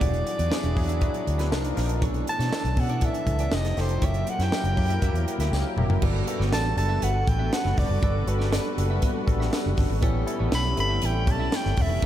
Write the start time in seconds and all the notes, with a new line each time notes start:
Already playing: D5
0.00 E1 E3 F#3 B3 D4 E4 F#4 G#4 D5, kick, closed hi-hat
0.08 G#4
0.14 closed hi-hat
0.26 muted clean electric guitar stroke, closed hi-hat
0.38 E2 B3 F#4 G#4 D5, closed hi-hat
0.50 F#3 B3 D4 E4 F#4 G#4 D5, snare, tambourine
0.64 E1, muted clean electric guitar stroke, closed hi-hat
0.75 E2 F#3 D4 E4 G#4, muted clean electric guitar stroke, kick, open hi-hat
0.88 B3 F#4 G#4 E5, closed hi-hat
1.01 F#3 B3 D4 E4 F#4 G#4 E5, kick, closed hi-hat
1.13 muted clean electric guitar stroke, closed hi-hat
1.26 D2, muted clean electric guitar stroke, closed hi-hat
1.38 F#3 B3 D4 E4 F#4 G#4 B4 E5, snare, closed hi-hat
1.51 C2 C3 F3 A#3 D4 D#4 F4 A#4, muted clean electric guitar stroke, snare, tambourine
1.64 muted clean electric guitar stroke, closed hi-hat
1.76 A#1 F3 D4 D#4 A#4, snare, open hi-hat
1.89 muted clean electric guitar stroke, closed hi-hat
2.01 B1 D3 E3 A3 B3 C#4 D4 E4 A4 C#5, kick, closed hi-hat
2.14 closed hi-hat
2.27 A5, muted clean electric guitar stroke, closed hi-hat
2.39 B2 D4 E4 A4 C#5, snare, closed hi-hat
2.51 E3 C#4 D4 E4 A4 C#5, snare, tambourine
2.65 B1, closed hi-hat
2.76 B2 E3 C#4 D4 A4 F#5, muted clean electric guitar stroke, kick, open hi-hat
2.89 D4 E4 A4 D5, closed hi-hat
3.01 E3 C#4 D4 E4 A4 D5, kick, closed hi-hat
3.06 E5
3.14 muted clean electric guitar stroke, closed hi-hat
3.26 C#2, muted clean electric guitar stroke, kick, closed hi-hat
3.39 E3 C#4 D4 E4 A4 D5, closed hi-hat
3.51 F1 F3 A3 D#4 G4 A4 D#5 G5, snare, tambourine
3.65 muted clean electric guitar stroke, snare, closed hi-hat
3.77 F1 F3 A3 D#4 G4, snare, open hi-hat
3.81 C5
3.89 muted clean electric guitar stroke, closed hi-hat
4.00 F#1 F#3 A3 A#3 E4 G4 A#4 C#5, kick, closed hi-hat
4.06 A#3 E5
4.14 closed hi-hat
4.27 F#5, muted clean electric guitar stroke, closed hi-hat
4.39 F#2 A#3 E4 G4 C#5, snare, closed hi-hat
4.44 G5
4.51 F#3 A#3 E4 G4 C#5, snare, tambourine
4.64 F#1, muted clean electric guitar stroke, closed hi-hat
4.76 F#2 F#3 A#3 E4 G4, muted clean electric guitar stroke, kick, open hi-hat
4.89 A#3 E4 G4 E5, closed hi-hat
5.01 F#2 F#3 A#3 E4 G4 E5, kick, closed hi-hat
5.13 E2, muted clean electric guitar stroke, closed hi-hat
5.27 F#5, muted clean electric guitar stroke, closed hi-hat
5.39 D2 F#3 A#3 E4 G4 E5, snare, closed hi-hat
5.52 C#2 G5, muted clean electric guitar stroke, snare, tambourine
5.65 muted clean electric guitar stroke
5.76 F1 F#3 A#3 E4 G4, mid tom
5.89 F#1, muted clean electric guitar stroke, floor tom
6.02 G1 G3 B3 D4 F#4 A4 B4 D5, kick, crash
6.27 G3 B3 D4 F#4 A4, muted clean electric guitar stroke, closed hi-hat
6.40 G1 B3 F#4 A4 D5, snare
6.52 A1 B3 F#4 A4 D5 A5, snare, closed hi-hat, tambourine
6.66 muted clean electric guitar stroke
6.77 F#1 G3 B3 D4 F#4 A4 A5, muted clean electric guitar stroke, closed hi-hat
6.89 B3 F#4 A4 E5
7.02 G1 B3 F#4 A4 E5 F#5, closed hi-hat
7.14 muted clean electric guitar stroke
7.27 A1 G5, muted clean electric guitar stroke, kick, closed hi-hat
7.39 B3 F#4 A4 E5
7.52 F#5, muted clean electric guitar stroke, snare, closed hi-hat, tambourine
7.65 F#1, muted clean electric guitar stroke, snare
7.77 F1 D5, kick, snare, open hi-hat
7.89 F#1, muted clean electric guitar stroke
8.02 G1 G3 B3 D4 F#4 A4 D5, kick, closed hi-hat
8.27 G1 G3 B3 D4 F#4 A4 B4, muted clean electric guitar stroke, closed hi-hat
8.39 B3 F#4 A4 D5, snare
8.52 B3 F#4 A4 D5, snare, closed hi-hat, tambourine
8.65 muted clean electric guitar stroke
8.77 F#1 G3 A#3 D4 F#4 A4, muted clean electric guitar stroke, closed hi-hat
8.83 B3
8.90 B3 F#4 A4 E5
9.02 B3 F#4 A4 E5, kick, closed hi-hat
9.15 muted clean electric guitar stroke
9.26 A1 G3 B3 D4 F#4 A4, muted clean electric guitar stroke, kick, closed hi-hat
9.40 B3 F#4 A4 E5, snare
9.53 F#4 D5, muted clean electric guitar stroke, snare, closed hi-hat, tambourine
9.64 F#1, muted clean electric guitar stroke
9.77 G1 C#4 A4, kick, snare, open hi-hat
9.90 G#1, muted clean electric guitar stroke
10.01 A1 G3 A3 B3 C#4 E4 G4 A4 C#5, kick, closed hi-hat
10.26 G3 B3 C#4 E4 A4, closed hi-hat
10.39 A1 B3 E4 G4 C#5
10.51 B1 B3 E4 G4 C#5 B5, snare, closed hi-hat, tambourine
10.76 G1 G3 B3 C4 E4 A4 B5, muted clean electric guitar stroke, closed hi-hat
10.83 C#4
10.89 B3 E4 G4 E5
11.02 A1 B3 E4 G4 E5 G5, closed hi-hat
11.14 muted clean electric guitar stroke
11.27 B1, muted clean electric guitar stroke, kick, closed hi-hat
11.31 A5
11.39 B3 E4 G4 E5
11.52 snare, closed hi-hat, tambourine
11.56 G5
11.65 G1, muted clean electric guitar stroke, snare
11.77 E1, kick, open hi-hat
11.81 E5
11.90 F1, muted clean electric guitar stroke
12.02 F#1 F#3 A3 C#4 E4, kick, closed hi-hat